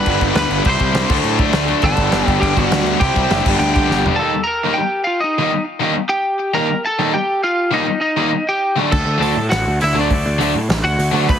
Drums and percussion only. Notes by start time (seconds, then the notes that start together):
0.06 kick, crash
0.21 kick, crash
0.35 snare, crash
0.51 crash
0.65 kick, crash
0.80 kick, crash
0.95 snare, crash
1.10 kick, crash
1.24 crash
1.39 kick, crash
1.53 snare, crash
1.68 crash
1.82 kick, crash
1.97 kick, crash
2.12 snare, crash
2.27 kick, crash
2.42 kick, crash
2.57 kick, crash
2.72 snare, crash
2.86 crash
3.01 kick, crash
3.16 kick, crash
3.30 snare, crash
3.46 kick, crash
3.61 crash
3.76 kick, crash
3.91 snare
4.06 floor tom
8.92 kick, crash
9.22 open hi-hat
9.51 snare, open hi-hat
9.81 open hi-hat
10.10 kick, open hi-hat
10.41 open hi-hat
10.70 snare, open hi-hat
10.99 open hi-hat
11.29 kick, open hi-hat